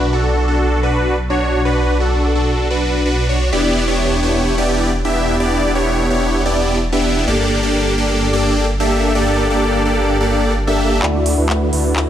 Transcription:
0.00 3.50 B1 medium
0.13 0.45 D4 medium
0.13 0.45 F#4 medium
0.13 0.45 A4 medium
0.48 0.80 D4 medium
0.48 0.80 F#4 medium
0.48 0.80 A4 medium
0.83 1.15 D4 medium
0.83 1.15 F#4 medium
0.83 1.15 B4 medium
1.30 1.62 D4 medium
1.30 1.62 F#4 medium
1.30 1.62 C#5 loud
1.65 1.97 D4 loud
1.65 1.97 F#4 medium
1.65 1.97 B4 loud
2.00 2.33 D4 medium
2.00 2.33 F#4 medium
2.00 2.33 A4 medium
2.35 2.68 D4 medium
2.35 2.68 F#4 medium
2.35 2.68 A4 medium
2.70 3.03 D4 medium
2.70 3.03 F#4 medium
2.70 3.03 B4 loud
3.05 3.26 D4 medium
3.05 3.26 F#4 medium
3.05 3.26 B4 medium
3.29 3.50 D4 medium
3.29 3.50 F#4 medium
3.29 3.50 C#5 medium
3.52 7.25 E1 medium
3.52 3.85 B3 medium
3.52 3.85 D4 medium
3.52 3.85 E4 medium
3.52 3.85 G4 medium
3.52 3.85 D5 loud
3.88 4.20 B3 medium
3.88 4.20 D4 medium
3.88 4.20 E4 medium
3.88 4.20 G4 medium
3.88 4.20 C#5 medium
4.23 4.55 B3 medium
4.23 4.55 D4 medium
4.23 4.55 E4 medium
4.23 4.55 G4 medium
4.23 4.55 C#5 medium
4.58 4.90 B3 medium
4.58 4.90 D4 medium
4.58 4.90 E4 medium
4.58 4.90 G4 medium
4.58 4.90 D5 medium
5.05 5.37 B3 medium
5.05 5.37 D4 medium
5.05 5.37 E4 medium
5.05 5.37 G4 medium
5.05 5.37 E5 loud
5.40 5.72 B3 loud
5.40 5.72 D4 medium
5.40 5.72 E4 medium
5.40 5.72 G4 medium
5.40 5.72 D5 loud
5.75 6.08 B3 medium
5.75 6.08 D4 medium
5.75 6.08 E4 medium
5.75 6.08 G4 medium
5.75 6.08 C#5 medium
6.10 6.43 B3 medium
6.10 6.43 D4 medium
6.10 6.43 E4 medium
6.10 6.43 G4 medium
6.10 6.43 C#5 medium
6.46 6.78 B3 medium
6.46 6.78 D4 medium
6.46 6.78 E4 medium
6.46 6.78 G4 medium
6.46 6.78 D5 loud
6.92 7.25 B3 medium
6.92 7.25 D4 medium
6.92 7.25 E4 medium
6.92 7.25 G4 medium
6.92 7.25 E5 loud
7.28 11.00 G1 medium
7.28 7.60 A#3 loud
7.28 7.60 D4 medium
7.28 7.60 G4 medium
7.28 7.60 A4 medium
7.28 7.60 D5 loud
7.63 7.95 A#3 medium
7.63 7.95 D4 medium
7.63 7.95 G4 medium
7.63 7.95 A4 medium
7.63 7.95 D5 medium
7.98 8.30 A#3 medium
7.98 8.30 D4 medium
7.98 8.30 G4 medium
7.98 8.30 A4 medium
7.98 8.30 D5 medium
8.33 8.65 A#3 medium
8.33 8.65 D4 medium
8.33 8.65 G4 medium
8.33 8.65 A4 medium
8.33 8.65 D5 loud
8.80 9.12 A#3 loud
8.80 9.12 D4 medium
8.80 9.12 G4 medium
8.80 9.12 A4 medium
8.80 9.12 E5 loud
9.15 9.47 A#3 loud
9.15 9.47 D4 medium
9.15 9.47 G4 medium
9.15 9.47 A4 medium
9.15 9.47 D5 loud
9.50 9.83 A#3 medium
9.50 9.83 D4 medium
9.50 9.83 G4 medium
9.50 9.83 A4 medium
9.50 9.83 D5 medium
9.85 10.18 A#3 medium
9.85 10.18 D4 medium
9.85 10.18 G4 medium
9.85 10.18 A4 medium
9.85 10.18 D5 medium
10.20 10.53 A#3 medium
10.20 10.53 D4 medium
10.20 10.53 G4 medium
10.20 10.53 A4 medium
10.20 10.53 D5 loud
10.67 11.00 A#3 medium
10.67 11.00 D4 medium
10.67 11.00 G4 medium
10.67 11.00 A4 medium
10.67 11.00 E5 loud
11.02 11.35 D2 medium
11.02 11.35 A3 loud
11.02 11.35 D4 medium
11.02 11.35 E4 medium
11.02 11.35 F#4 medium
11.02 11.35 D5 loud
11.02 clap soft
11.26 open hi-hat loud
11.37 11.71 D2 loud
11.37 11.70 A3 medium
11.37 11.70 D4 medium
11.37 11.70 E4 medium
11.37 11.70 F#4 medium
11.37 11.70 B4 medium
11.49 clap soft
11.73 12.06 D2 loud
11.73 12.05 A3 medium
11.73 12.05 D4 medium
11.73 12.05 E4 medium
11.73 12.05 F#4 medium
11.73 12.05 B4 medium
11.73 open hi-hat medium
11.96 clap soft

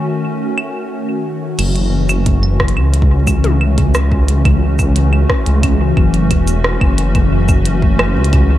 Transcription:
0.00 1.55 D#3 medium
0.00 1.55 A3 medium
0.00 1.56 C#4 medium
0.00 1.55 F#4 medium
0.58 claves medium
1.59 2.78 F#1 loud
1.59 8.58 E3 medium
1.59 8.58 A3 medium
1.59 8.58 C#4 medium
1.59 8.58 F#4 medium
1.59 closed hi-hat medium
1.59 crash loud
1.59 claves medium
1.76 closed hi-hat soft
2.09 cabasa medium
2.09 claves medium
2.26 kick loud
2.26 closed hi-hat medium
2.43 claves medium
2.60 kick loud
2.60 cross-stick loud
2.68 closed hi-hat medium
2.77 5.25 C#2 loud
2.77 claves medium
2.94 closed hi-hat medium
3.02 kick loud
3.27 kick loud
3.27 cabasa medium
3.27 claves medium
3.44 closed hi-hat soft
3.44 high tom medium
3.61 claves medium
3.78 kick loud
3.78 closed hi-hat medium
3.95 cross-stick loud
3.95 cabasa medium
3.95 claves medium
4.12 kick loud
4.28 closed hi-hat medium
4.45 kick loud
4.45 closed hi-hat soft
4.45 claves medium
4.79 kick loud
4.79 cabasa medium
4.79 claves medium
4.96 closed hi-hat medium
5.13 claves medium
5.30 kick loud
5.30 cross-stick loud
5.46 5.93 C#2 loud
5.46 closed hi-hat medium
5.63 kick loud
5.63 closed hi-hat medium
5.63 claves medium
5.97 6.32 F#1 medium
5.97 kick loud
5.97 claves medium
6.14 closed hi-hat soft
6.31 6.77 E1 loud
6.31 kick loud
6.31 closed hi-hat medium
6.31 claves medium
6.48 closed hi-hat medium
6.48 cabasa medium
6.64 cross-stick loud
6.81 6.95 F#1 medium
6.81 kick loud
6.81 claves medium
6.98 8.18 F#1 loud
6.98 closed hi-hat medium
7.15 kick loud
7.15 closed hi-hat soft
7.15 claves soft
7.49 kick loud
7.49 cabasa medium
7.49 claves medium
7.66 closed hi-hat medium
7.82 kick loud
7.99 cross-stick loud
7.99 claves medium
8.16 8.58 C#2 loud
8.24 closed hi-hat medium
8.33 kick loud
8.33 closed hi-hat medium
8.33 claves soft

